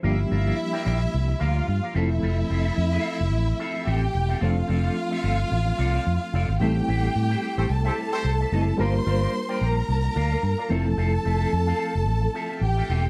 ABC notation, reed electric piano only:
X:1
M:4/4
L:1/8
Q:"Swing 16ths" 1/4=110
K:Gdor
V:1 name="Reed electric piano"
[F,G,B,DG]6- [F,G,B,DG] [F,A,CEA]- | [F,A,CEA]6- [F,A,CEA] z | [F,A,CDA]8 | [G,A,CEA]6- [G,A,CEA] [G,A,CEA] |
[G,B,DFB]6- [G,B,DFB] [F,A,CEA]- | [F,A,CEA]6- [F,A,CEA] z |]